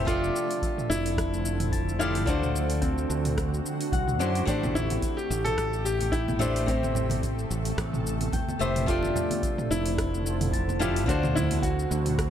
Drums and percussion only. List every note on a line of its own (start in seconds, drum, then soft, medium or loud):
0.07 kick loud
0.07 open hi-hat medium
0.07 shaker soft
0.24 shaker soft
0.36 shaker medium
0.51 open hi-hat medium
0.51 shaker soft
0.62 kick loud
0.62 open hi-hat soft
0.62 shaker soft
0.78 mid tom medium
0.78 shaker soft
0.91 shaker medium
1.06 open hi-hat medium
1.06 shaker soft
1.17 kick loud
1.17 cross-stick medium
1.17 open hi-hat soft
1.17 shaker soft
1.34 shaker soft
1.45 shaker medium
1.60 mid tom medium
1.60 open hi-hat medium
1.60 shaker soft
1.73 kick loud
1.73 open hi-hat soft
1.73 shaker soft
1.89 shaker soft
2.01 shaker medium
2.15 open hi-hat medium
2.15 shaker soft
2.27 kick loud
2.27 open hi-hat soft
2.27 shaker medium
2.43 mid tom medium
2.43 shaker soft
2.56 shaker medium
2.70 open hi-hat medium
2.70 shaker soft
2.82 kick loud
2.82 open hi-hat soft
2.82 shaker soft
2.98 shaker soft
3.10 shaker medium
3.25 mid tom medium
3.25 open hi-hat medium
3.25 shaker soft
3.38 kick loud
3.38 cross-stick medium
3.38 open hi-hat soft
3.38 shaker soft
3.54 shaker soft
3.66 shaker medium
3.81 open hi-hat medium
3.81 shaker soft
3.93 kick loud
3.93 open hi-hat soft
3.93 shaker soft
4.08 mid tom medium
4.08 shaker soft
4.21 shaker medium
4.35 open hi-hat medium
4.35 shaker soft
4.47 kick loud
4.47 open hi-hat soft
4.47 shaker soft
4.63 mid tom medium
4.63 high conga medium
4.63 shaker soft
4.75 low conga medium
4.75 shaker medium
4.90 open hi-hat medium
4.90 high conga medium
4.90 shaker soft
5.02 kick loud
5.02 open hi-hat soft
5.02 shaker soft
5.18 shaker soft
5.31 shaker medium
5.46 mid tom medium
5.46 open hi-hat medium
5.46 shaker soft
5.58 kick loud
5.58 cross-stick medium
5.58 open hi-hat soft
5.58 shaker soft
5.73 shaker soft
5.86 shaker medium
6.01 open hi-hat medium
6.01 high conga medium
6.01 shaker soft
6.13 kick loud
6.13 open hi-hat soft
6.13 shaker soft
6.28 mid tom medium
6.28 high conga medium
6.28 shaker soft
6.40 low conga medium
6.40 shaker medium
6.56 open hi-hat medium
6.56 shaker soft
6.68 kick loud
6.68 open hi-hat soft
6.68 shaker soft
6.83 high conga medium
6.83 shaker soft
6.95 low conga medium
6.95 shaker medium
7.10 mid tom medium
7.10 open hi-hat medium
7.10 high conga medium
7.10 shaker soft
7.23 kick loud
7.23 open hi-hat soft
7.23 shaker soft
7.39 shaker soft
7.51 shaker medium
7.65 open hi-hat medium
7.65 shaker soft
7.78 kick loud
7.78 cross-stick medium
7.78 open hi-hat soft
7.78 shaker soft
7.93 mid tom medium
7.93 shaker soft
8.07 shaker medium
8.21 open hi-hat medium
8.21 high conga medium
8.21 shaker soft
8.33 kick loud
8.33 open hi-hat soft
8.33 low conga medium
8.33 shaker soft
8.49 high conga medium
8.49 shaker soft
8.61 shaker medium
8.76 mid tom medium
8.76 open hi-hat medium
8.76 shaker soft
8.88 kick loud
8.88 open hi-hat medium
8.88 shaker soft
9.02 high conga medium
9.02 shaker soft
9.16 low conga loud
9.16 shaker medium
9.31 open hi-hat medium
9.31 high conga medium
9.31 shaker soft
9.43 kick loud
9.43 open hi-hat soft
9.43 shaker soft
9.58 mid tom medium
9.58 shaker soft
9.72 shaker medium
9.86 open hi-hat medium
9.86 shaker soft
9.98 kick loud
9.98 cross-stick medium
9.98 open hi-hat soft
9.98 shaker soft
10.14 shaker soft
10.26 shaker medium
10.41 mid tom medium
10.41 open hi-hat medium
10.41 high conga medium
10.41 shaker soft
10.53 kick loud
10.53 open hi-hat soft
10.53 shaker soft
10.69 high conga medium
10.69 shaker soft
10.80 low conga medium
10.80 shaker medium
10.96 open hi-hat medium
10.96 shaker soft
11.08 kick loud
11.08 open hi-hat medium
11.08 shaker soft
11.23 mid tom medium
11.23 high conga medium
11.23 shaker soft
11.36 low conga loud
11.36 shaker medium
11.51 open hi-hat medium
11.51 high conga medium
11.51 shaker soft
11.63 kick loud
11.63 open hi-hat soft
11.63 shaker soft
11.79 shaker soft
11.91 shaker medium
12.06 mid tom medium
12.06 open hi-hat medium
12.06 shaker soft
12.18 kick loud
12.18 cross-stick medium
12.18 open hi-hat soft
12.18 shaker soft